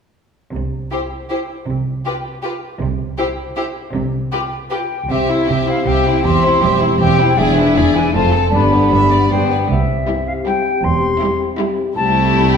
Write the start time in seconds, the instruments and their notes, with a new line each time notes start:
0.53 double bass section C2, cello section C3
0.91 viola section E4, violin section G4 C5
1.30 viola section E4, violin section G4 C5
1.68 double bass section C2, cello section C3
2.05 viola section F4, violin section G4 B4
2.42 viola section F4, violin section G4 B4
2.80 double bass section C2, cello section C3
3.18 viola section E4, violin section G4 C5
3.56 viola section E4, violin section G4 C5
3.94 double bass section C2, cello section C3
4.32 viola section F4, violin section G4 B4
4.70 viola section F4, violin section G4 B4, flute G5
5.09 double bass section C2, cello section C3, french horn section C4 G4, viola section C4, violin section G4 E5, flute E5
5.28 violin section E4 C5, viola section E4
5.48 double bass section C2, cello section C3, viola section C4, violin section G4 E5
5.67 viola section E4, violin section E4 C5, flute F5
5.86 double bass section C2, cello section C3, viola section C4, violin section G4 E5, flute G5
6.06 viola section E4, violin section E4 C5
6.25 double bass section E1, cello section E2, viola section C4, violin section G4 E5, flute C6
6.43 violin section E4 C5, viola section E4
6.61 double bass section E1, cello section E2, viola section C4, violin section G4 E5
6.80 violin section E4 C5, viola section E4
7.00 double bass section E1, cello section E2, viola section C4, violin section G4 E5, flute G5
7.19 violin section E4 C5, viola section E4
7.36 double bass section E1, cello section E2, french horn section D4 G#4, viola section E4, violin section G#4 D5, flute E5
7.56 viola section D4, violin section E4 B4
7.75 double bass section E1, cello section E2, viola section E4, violin section G#4 D5
7.94 viola section D4, violin section E4 B4, flute G#5
8.13 double bass section F1, cello section F2, viola section A3, french horn section C4 A4, violin section F4 C5, flute A5
8.32 viola section C4, violin section A4
8.52 double bass section G1, cello section G2, viola section B3, violin section D4 B4, french horn section D4 G4, flute B5
8.72 viola section G3, violin section B3 G4
8.91 double bass section G1, cello section G2, viola section B3, violin section D4 E5
9.10 viola section G3, violin section B3 D5
9.30 double bass section G1, cello section G2, viola section B3, violin section D4 C5, french horn section D4 G4, flute G5
9.49 viola section G3, violin section B3 B4
9.69 double bass section C2, cello section C2, french horn section C4 G4, flute E5
10.07 viola section G3, violin section E4 G4
10.27 flute F5
10.46 viola section G3, violin section E4 G4, flute G5
10.83 double bass section E1, cello section E2, flute C6
11.21 viola section G3, violin section E4 G4
11.58 viola section G3, violin section E4 G4
11.96 double bass section C2, cello section C2, viola section A3, french horn section C4 G4, violin section E4 G4, flute A5
12.52 flute G5